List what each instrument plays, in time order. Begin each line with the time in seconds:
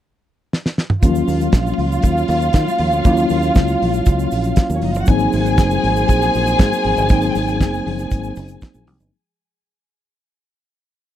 0.53 snare
0.66 snare
0.78 snare
0.90 mid tom
1.01 fingered electric bass D#2, tine electric piano F#3 A#3 C#4 F4, french horn section F#3 C#4 F5, string section F4 F5, kick, closed hi-hat, muted conga, low conga, shaker
1.15 shaker
1.28 fingered electric bass D#2, open hi-hat, muted conga, high conga, shaker
1.41 closed hi-hat, shaker
1.52 fingered electric bass A#1, kick, snare, closed hi-hat, shaker
1.67 high conga, shaker
1.78 fingered electric bass C#2, open hi-hat, low conga
1.92 closed hi-hat, shaker
2.02 fingered electric bass D#2, kick, closed hi-hat, shaker
2.17 shaker
2.28 fingered electric bass D#2, open hi-hat, muted conga, shaker
2.40 closed hi-hat, shaker
2.53 fingered electric bass D#3, kick, snare, closed hi-hat, muted conga, shaker
2.68 high conga, shaker
2.78 fingered electric bass D#2, open hi-hat, low conga
2.91 fingered electric bass D2, closed hi-hat, shaker
3.04 fingered electric bass D#2, tine electric piano F#3 A#3 C#4 E4, kick, closed hi-hat, muted conga, low conga, shaker
3.13 tine electric piano F4, shaker
3.29 fingered electric bass D#2, open hi-hat, high conga, shaker
3.42 closed hi-hat, shaker
3.55 fingered electric bass C#2, kick, snare, closed hi-hat, muted conga, shaker
3.68 high conga, shaker
3.82 fingered electric bass A#1, open hi-hat, low conga
3.94 closed hi-hat, shaker
4.06 fingered electric bass C#2, kick, closed hi-hat, shaker
4.19 shaker
4.31 fingered electric bass A#1, open hi-hat, shaker
4.44 closed hi-hat, shaker
4.56 kick, snare, closed hi-hat, muted conga, shaker
4.70 fingered electric bass D#2, high conga, shaker
4.75 string section C#4 C#5
4.81 fingered electric bass F#1, string section D#4 D#5, open hi-hat, muted conga, low conga
4.91 string section F4 F5, closed hi-hat, shaker
4.96 fingered electric bass G1
5.00 string section F#4 F#5
5.05 fingered electric bass G#1, tine electric piano F#3 A#3 C4 D#4, string section G#4 G#5, kick, closed hi-hat, low conga, shaker
5.10 french horn section A#3 F#4 C5
5.19 shaker
5.32 fingered electric bass G#1, open hi-hat, muted conga, high conga, shaker
5.46 closed hi-hat, shaker
5.58 fingered electric bass F#1, kick, snare, closed hi-hat, muted conga, shaker
5.71 high conga, shaker
5.84 fingered electric bass G#1, open hi-hat, muted conga, low conga
5.96 closed hi-hat, shaker
6.08 fingered electric bass A#1, kick, closed hi-hat, shaker
6.22 shaker
6.33 fingered electric bass A#1, open hi-hat, shaker
6.46 closed hi-hat, shaker
6.59 fingered electric bass G#2, kick, snare, closed hi-hat, shaker
6.72 high conga, shaker
6.84 fingered electric bass G#1, open hi-hat, low conga
6.97 fingered electric bass G1, closed hi-hat, shaker
7.09 fingered electric bass G#1, tine electric piano F#3 A#3 C4 D#4, french horn section G#4, kick, closed hi-hat, shaker
7.22 shaker
7.35 fingered electric bass G#1, open hi-hat, high conga, shaker
7.48 closed hi-hat, shaker
7.61 fingered electric bass F#1, kick, snare, closed hi-hat, muted conga, shaker
7.74 high conga, shaker
7.86 fingered electric bass F#1, open hi-hat, muted conga, low conga
7.99 closed hi-hat, shaker
8.11 fingered electric bass G#1, kick, closed hi-hat, shaker
8.24 shaker
8.36 fingered electric bass F#1, open hi-hat, shaker
8.48 closed hi-hat, shaker
8.61 kick, snare, closed hi-hat, muted conga, shaker
8.74 fingered electric bass A#1, high conga, shaker
8.87 fingered electric bass C2, open hi-hat, low conga
9.00 fingered electric bass G1, shaker